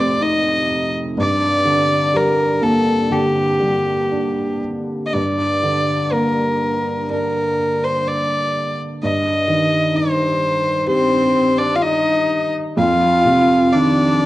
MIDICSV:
0, 0, Header, 1, 4, 480
1, 0, Start_track
1, 0, Key_signature, -2, "minor"
1, 0, Tempo, 963082
1, 588, Time_signature, 4, 2, 24, 8
1, 1546, Tempo, 1016949
1, 2506, Tempo, 980392
1, 3946, Tempo, 936037
1, 5866, Tempo, 956938
1, 7088, End_track
2, 0, Start_track
2, 0, Title_t, "Fiddle"
2, 0, Program_c, 0, 110
2, 0, Note_on_c, 0, 74, 67
2, 111, Note_on_c, 0, 75, 79
2, 119, Note_off_c, 0, 74, 0
2, 470, Note_off_c, 0, 75, 0
2, 602, Note_on_c, 0, 74, 77
2, 1078, Note_on_c, 0, 70, 66
2, 1085, Note_off_c, 0, 74, 0
2, 1310, Note_on_c, 0, 69, 65
2, 1318, Note_off_c, 0, 70, 0
2, 1552, Note_on_c, 0, 67, 60
2, 1559, Note_off_c, 0, 69, 0
2, 2271, Note_off_c, 0, 67, 0
2, 2472, Note_on_c, 0, 75, 45
2, 2504, Note_on_c, 0, 74, 64
2, 2512, Note_off_c, 0, 75, 0
2, 2991, Note_on_c, 0, 70, 54
2, 2998, Note_off_c, 0, 74, 0
2, 3470, Note_off_c, 0, 70, 0
2, 3473, Note_on_c, 0, 70, 59
2, 3831, Note_on_c, 0, 72, 53
2, 3839, Note_off_c, 0, 70, 0
2, 3948, Note_on_c, 0, 74, 60
2, 3955, Note_off_c, 0, 72, 0
2, 4314, Note_off_c, 0, 74, 0
2, 4434, Note_on_c, 0, 75, 73
2, 4910, Note_on_c, 0, 72, 66
2, 4918, Note_off_c, 0, 75, 0
2, 5379, Note_off_c, 0, 72, 0
2, 5382, Note_on_c, 0, 72, 75
2, 5743, Note_on_c, 0, 74, 65
2, 5751, Note_off_c, 0, 72, 0
2, 5833, Note_on_c, 0, 77, 52
2, 5841, Note_off_c, 0, 74, 0
2, 5864, Note_on_c, 0, 75, 70
2, 5872, Note_off_c, 0, 77, 0
2, 6223, Note_off_c, 0, 75, 0
2, 6345, Note_on_c, 0, 77, 89
2, 6824, Note_on_c, 0, 74, 79
2, 6832, Note_off_c, 0, 77, 0
2, 7088, Note_off_c, 0, 74, 0
2, 7088, End_track
3, 0, Start_track
3, 0, Title_t, "Viola"
3, 0, Program_c, 1, 41
3, 5381, Note_on_c, 1, 60, 54
3, 5743, Note_on_c, 1, 62, 52
3, 5751, Note_off_c, 1, 60, 0
3, 5828, Note_on_c, 1, 65, 41
3, 5835, Note_off_c, 1, 62, 0
3, 5869, Note_on_c, 1, 63, 64
3, 5876, Note_off_c, 1, 65, 0
3, 6225, Note_off_c, 1, 63, 0
3, 6347, Note_on_c, 1, 65, 72
3, 6827, Note_on_c, 1, 62, 66
3, 6835, Note_off_c, 1, 65, 0
3, 7088, Note_off_c, 1, 62, 0
3, 7088, End_track
4, 0, Start_track
4, 0, Title_t, "Felt piano"
4, 0, Program_c, 2, 0
4, 0, Control_c, 2, 64, 127
4, 0, Note_on_c, 2, 41, 52
4, 0, Note_on_c, 2, 48, 50
4, 0, Note_on_c, 2, 57, 43
4, 0, Note_on_c, 2, 60, 48
4, 105, Note_on_c, 2, 63, 46
4, 325, Note_off_c, 2, 60, 0
4, 563, Note_off_c, 2, 41, 0
4, 565, Note_off_c, 2, 57, 0
4, 567, Note_off_c, 2, 48, 0
4, 573, Note_off_c, 2, 63, 0
4, 586, Note_on_c, 2, 43, 51
4, 595, Control_c, 2, 64, 0
4, 684, Control_c, 2, 64, 127
4, 824, Note_on_c, 2, 50, 40
4, 1064, Note_on_c, 2, 55, 40
4, 1304, Note_on_c, 2, 58, 43
4, 1538, Note_off_c, 2, 50, 0
4, 1545, Note_on_c, 2, 50, 40
4, 1773, Note_off_c, 2, 55, 0
4, 1780, Note_on_c, 2, 55, 39
4, 2021, Note_on_c, 2, 62, 37
4, 2250, Note_off_c, 2, 58, 0
4, 2487, Note_off_c, 2, 43, 0
4, 2487, Note_off_c, 2, 50, 0
4, 2487, Note_off_c, 2, 55, 0
4, 2491, Note_off_c, 2, 62, 0
4, 2507, Note_on_c, 2, 43, 45
4, 2513, Control_c, 2, 64, 0
4, 2610, Control_c, 2, 64, 127
4, 2749, Note_on_c, 2, 50, 39
4, 2989, Note_on_c, 2, 58, 34
4, 3469, Note_on_c, 2, 62, 42
4, 3691, Note_off_c, 2, 50, 0
4, 3926, Note_off_c, 2, 58, 0
4, 4411, Note_off_c, 2, 62, 0
4, 4413, Note_off_c, 2, 43, 0
4, 4434, Note_on_c, 2, 43, 43
4, 4441, Control_c, 2, 64, 0
4, 4530, Control_c, 2, 64, 127
4, 4665, Note_on_c, 2, 51, 37
4, 4903, Note_on_c, 2, 63, 36
4, 5381, Note_on_c, 2, 67, 46
4, 5599, Note_off_c, 2, 51, 0
4, 5843, Note_off_c, 2, 63, 0
4, 6321, Note_off_c, 2, 67, 0
4, 6323, Note_off_c, 2, 43, 0
4, 6342, Note_on_c, 2, 41, 56
4, 6349, Control_c, 2, 64, 0
4, 6445, Control_c, 2, 64, 127
4, 6583, Note_on_c, 2, 48, 43
4, 6829, Note_on_c, 2, 51, 39
4, 7088, Note_off_c, 2, 41, 0
4, 7088, Note_off_c, 2, 48, 0
4, 7088, Note_off_c, 2, 51, 0
4, 7088, End_track
0, 0, End_of_file